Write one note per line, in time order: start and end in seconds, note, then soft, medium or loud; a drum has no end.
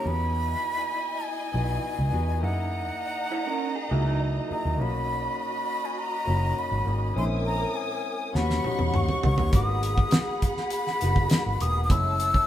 0.03 0.53 E2 loud
0.03 0.87 B3 medium
0.03 0.87 D#4 medium
0.03 2.38 E4 medium
0.03 0.88 F#4 medium
0.03 0.88 G#4 medium
0.03 2.38 D#5 medium
0.03 2.38 G#5 medium
0.03 1.27 B5 loud
1.25 2.45 G#5 loud
1.52 1.78 B1 medium
1.52 1.94 B3 medium
1.52 1.94 D#4 medium
1.52 1.95 F#4 medium
1.52 1.95 B4 medium
1.99 2.10 C#2 medium
2.11 2.43 E2 medium
2.11 2.32 B3 medium
2.11 2.33 D#4 medium
2.11 2.33 F#4 medium
2.11 2.34 G#4 medium
2.40 2.90 F#2 loud
2.40 3.23 A#3 medium
2.40 3.24 D#4 medium
2.40 4.75 D#4 medium
2.40 3.25 E4 medium
2.40 3.25 G#4 medium
2.40 4.75 D#5 medium
2.40 4.24 F#5 medium
2.40 4.75 A#5 medium
3.32 3.46 E4 medium
3.32 3.45 C#5 soft
3.47 3.75 C#4 medium
3.47 3.75 A#4 medium
3.75 3.90 G#4 medium
3.89 4.39 C#2 medium
3.89 4.31 A#3 medium
3.89 4.05 A#3 soft
3.89 4.31 D#4 medium
3.89 4.32 E4 medium
3.89 4.05 F#4 medium
3.89 4.33 G#4 medium
4.05 4.76 F#3 medium
4.05 4.76 D#4 medium
4.49 4.70 A#3 medium
4.49 4.70 D#4 medium
4.49 4.71 E4 medium
4.49 4.71 G#4 medium
4.49 4.83 A#5 medium
4.49 muted fingered electric bass stroke soft
4.65 4.80 D#2 medium
4.78 5.28 B1 loud
4.78 5.61 A#3 medium
4.78 5.62 C#4 medium
4.78 5.62 D#4 medium
4.78 7.12 F#4 medium
4.78 5.63 F#4 medium
4.78 7.12 D#5 medium
4.78 7.12 B5 medium
4.78 5.39 B5 medium
5.40 5.87 B5 medium
5.85 6.00 G#5 medium
5.99 6.60 A#5 medium
6.25 6.51 F#1 medium
6.25 6.67 A#3 medium
6.25 6.68 C#4 medium
6.25 6.69 D#4 medium
6.25 6.69 F#4 medium
6.59 7.17 B5 medium
6.72 6.84 G#1 medium
6.85 7.10 G#1 medium
6.85 7.06 A#3 medium
6.85 7.07 C#4 medium
6.85 7.07 D#4 medium
6.85 7.08 G#4 medium
7.14 7.64 A#1 loud
7.14 7.97 G#3 medium
7.14 7.98 C4 medium
7.14 7.98 C#4 medium
7.14 7.99 E4 medium
7.14 8.32 A#4 medium
7.14 8.32 G#5 medium
7.14 7.24 C6 medium
7.14 8.32 D#6 medium
7.46 7.78 A#5 medium
7.76 8.38 G#5 medium
8.33 8.59 D#2 loud
8.33 8.57 G3 medium
8.33 8.58 B3 medium
8.33 8.59 C#4 medium
8.33 8.59 F#4 medium
8.33 9.51 G4 medium
8.33 9.51 F#5 medium
8.33 8.97 B5 loud
8.33 9.51 C#6 medium
8.33 snare soft
8.50 snare soft
8.63 9.05 G3 medium
8.63 9.05 B3 medium
8.63 9.06 C#4 medium
8.63 9.06 D#4 medium
8.63 muted fingered electric bass stroke soft
8.63 high tom medium
8.79 8.91 E2 medium
8.79 high tom medium
8.94 9.06 D#2 medium
8.94 9.24 C#6 medium
8.94 mid tom medium
9.09 mid tom medium
9.22 9.39 C#2 medium
9.22 9.43 G3 medium
9.22 9.44 B3 medium
9.22 9.44 C#4 medium
9.22 9.45 D#4 medium
9.22 9.52 C#6 medium
9.22 floor tom medium
9.38 9.51 D#2 medium
9.38 floor tom medium
9.51 10.01 G#1 loud
9.51 10.35 A#3 medium
9.51 10.35 B3 medium
9.51 10.36 D#4 medium
9.51 10.36 F#4 medium
9.51 11.86 G#4 medium
9.51 11.86 F#5 medium
9.51 11.86 B5 medium
9.51 10.41 D#6 medium
9.51 kick loud
9.51 closed hi-hat medium
9.83 closed hi-hat medium
9.98 kick medium
10.11 snare loud
10.11 closed hi-hat medium
10.42 kick medium
10.42 closed hi-hat medium
10.57 snare soft
10.70 11.63 B5 loud
10.70 closed hi-hat medium
10.87 snare soft
11.00 11.26 F#1 medium
11.00 11.42 A#3 medium
11.00 11.42 B3 medium
11.00 11.42 D#4 medium
11.00 11.43 F#4 medium
11.00 closed hi-hat medium
11.16 kick medium
11.30 snare loud
11.30 closed hi-hat medium
11.46 11.58 G#1 medium
11.59 11.90 E1 medium
11.59 11.80 A#3 medium
11.59 11.81 B3 medium
11.59 11.81 D#4 soft
11.59 11.82 G#4 medium
11.59 11.84 D#6 medium
11.59 closed hi-hat medium
11.84 11.92 D#6 medium
11.88 12.38 F#1 loud
11.88 12.47 G#3 medium
11.88 12.47 A3 medium
11.88 12.47 C#4 medium
11.88 12.47 E4 medium
11.88 12.47 C#5 medium
11.88 12.47 A5 medium
11.88 12.47 E6 loud
11.88 kick loud
11.88 closed hi-hat medium
12.20 closed hi-hat medium
12.34 kick medium